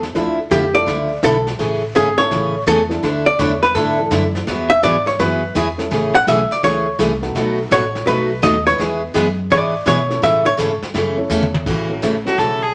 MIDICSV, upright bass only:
0, 0, Header, 1, 3, 480
1, 0, Start_track
1, 0, Key_signature, 3, "major"
1, 0, Tempo, 359712
1, 207, Time_signature, 4, 2, 24, 8
1, 17003, End_track
2, 0, Start_track
2, 0, Title_t, "Upright bass"
2, 0, Program_c, 0, 32
2, 0, Note_on_c, 0, 40, 99
2, 191, Note_off_c, 0, 40, 0
2, 203, Note_on_c, 0, 38, 69
2, 670, Note_off_c, 0, 38, 0
2, 677, Note_on_c, 0, 41, 93
2, 1147, Note_off_c, 0, 41, 0
2, 1161, Note_on_c, 0, 37, 74
2, 1629, Note_off_c, 0, 37, 0
2, 1637, Note_on_c, 0, 35, 101
2, 2107, Note_off_c, 0, 35, 0
2, 2119, Note_on_c, 0, 33, 76
2, 2588, Note_off_c, 0, 33, 0
2, 2601, Note_on_c, 0, 32, 86
2, 3069, Note_off_c, 0, 32, 0
2, 3082, Note_on_c, 0, 33, 84
2, 3549, Note_off_c, 0, 33, 0
2, 3559, Note_on_c, 0, 40, 105
2, 4028, Note_off_c, 0, 40, 0
2, 4044, Note_on_c, 0, 38, 76
2, 4510, Note_off_c, 0, 38, 0
2, 4523, Note_on_c, 0, 40, 95
2, 4990, Note_off_c, 0, 40, 0
2, 5003, Note_on_c, 0, 44, 80
2, 5470, Note_off_c, 0, 44, 0
2, 5481, Note_on_c, 0, 42, 96
2, 5948, Note_off_c, 0, 42, 0
2, 5964, Note_on_c, 0, 40, 80
2, 6430, Note_off_c, 0, 40, 0
2, 6445, Note_on_c, 0, 44, 94
2, 6911, Note_off_c, 0, 44, 0
2, 6924, Note_on_c, 0, 42, 79
2, 7391, Note_off_c, 0, 42, 0
2, 7405, Note_on_c, 0, 40, 91
2, 7871, Note_off_c, 0, 40, 0
2, 7887, Note_on_c, 0, 33, 81
2, 8352, Note_off_c, 0, 33, 0
2, 8367, Note_on_c, 0, 35, 95
2, 8660, Note_off_c, 0, 35, 0
2, 8847, Note_on_c, 0, 37, 74
2, 9312, Note_off_c, 0, 37, 0
2, 9326, Note_on_c, 0, 36, 107
2, 9792, Note_off_c, 0, 36, 0
2, 9807, Note_on_c, 0, 35, 78
2, 10272, Note_off_c, 0, 35, 0
2, 10285, Note_on_c, 0, 33, 101
2, 10752, Note_off_c, 0, 33, 0
2, 10767, Note_on_c, 0, 35, 80
2, 11233, Note_off_c, 0, 35, 0
2, 11246, Note_on_c, 0, 39, 102
2, 11712, Note_off_c, 0, 39, 0
2, 11728, Note_on_c, 0, 40, 71
2, 12193, Note_off_c, 0, 40, 0
2, 12207, Note_on_c, 0, 42, 96
2, 12672, Note_off_c, 0, 42, 0
2, 12687, Note_on_c, 0, 44, 78
2, 13152, Note_off_c, 0, 44, 0
2, 13163, Note_on_c, 0, 47, 104
2, 13630, Note_off_c, 0, 47, 0
2, 13643, Note_on_c, 0, 45, 86
2, 14110, Note_off_c, 0, 45, 0
2, 14123, Note_on_c, 0, 44, 92
2, 14418, Note_off_c, 0, 44, 0
2, 14599, Note_on_c, 0, 42, 78
2, 15068, Note_off_c, 0, 42, 0
2, 15073, Note_on_c, 0, 40, 106
2, 15545, Note_off_c, 0, 40, 0
2, 15562, Note_on_c, 0, 33, 78
2, 16332, Note_off_c, 0, 33, 0
2, 16523, Note_on_c, 0, 35, 73
2, 16933, Note_off_c, 0, 35, 0
2, 17003, End_track
3, 0, Start_track
3, 0, Title_t, "Muted upright bass strokes"
3, 8687, Note_on_c, 9, 29, 37
3, 8820, Note_off_c, 9, 29, 0
3, 14436, Note_on_c, 9, 29, 42
3, 14570, Note_off_c, 9, 29, 0
3, 17003, End_track
0, 0, End_of_file